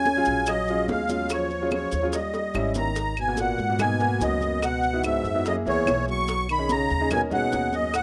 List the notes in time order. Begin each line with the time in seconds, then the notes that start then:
Already playing: D#2 C#4 G#5
0.05 high bongo, high conga, maracas
0.16 F#3 G#3 C#4 F4
0.25 A#1, high conga, maracas
0.46 F#3 D#5, high bongo, high conga, claves, maracas
0.68 F#3 G#3 C#4 F4, high conga, maracas
0.88 D#2 G#3 F5, high bongo, low bongo, high conga, maracas
1.09 F#3 G#3 C#4 F4, high conga, maracas
1.29 C#5, high bongo, high conga, claves, maracas
1.34 F3
1.50 high conga, maracas
1.61 F#3 G#3 C#4 F4
1.71 F3 C#5, high bongo, high conga, claves, maracas
1.92 D#2, high bongo, high conga, maracas
2.02 F#3 G#3 C#4 F4
2.13 G3 D#5, high bongo, high conga, maracas
2.34 high bongo, high conga, maracas
2.54 G#1 G3 C#4 E4, low bongo, high conga, claves, maracas
2.75 D#3 A#5, low bongo, high conga, maracas
2.96 high bongo, high conga, maracas
3.17 B2 G#5, high conga, claves, maracas
3.28 A#3 B3 F#4
3.37 A#2 F#5, high bongo, high conga, maracas
3.58 G#2, high bongo, high conga, maracas
3.69 A#3 B3 F#4
3.79 B2 A#3 B3 D#4 G#5, high bongo, high conga, low conga, claves, maracas
3.99 A#3 B3 F#4, high bongo, high conga, maracas
4.20 C#2 F#2 D#5, high bongo, low bongo, high conga, maracas
4.41 high bongo, high conga, maracas
4.62 B2 F#5, high bongo, high conga, claves, maracas
4.83 high conga, maracas
4.93 B3 D#4 E4 F#4
5.04 G#2 E5, high bongo, high conga, claves, maracas
5.24 F#2, high bongo, high conga, maracas
5.34 B3 D#4 E4 F#4
5.45 F#2 A#3 E4 G#4 D#5, high bongo, high conga, maracas
5.65 C#2 E2 A#3 E4 G#4 C#5, high bongo, high conga, maracas
5.86 B1, high bongo, low bongo, high conga, claves, maracas
6.08 F#3 C#6, high bongo, maracas
6.28 high bongo, high conga, maracas
6.49 D#3 B5, high conga, claves, maracas
6.58 C#4 D#4 G#4
6.69 C#3 A#5, high bongo, high conga, maracas
6.90 D#2, high bongo, high conga, maracas
7.00 C#4 D#4 G#4
7.10 B2 C#4 D#4 A#4 G#5, high bongo, high conga, low conga, claves, maracas
7.30 B2 C#4 D#4 G#4 F#5, high bongo, high conga, low conga, maracas
7.52 D#2, high bongo, low bongo, high conga, maracas
7.72 F#2 D#5, high bongo, high conga, maracas
7.93 A2 F#5, high bongo, high conga, claves, maracas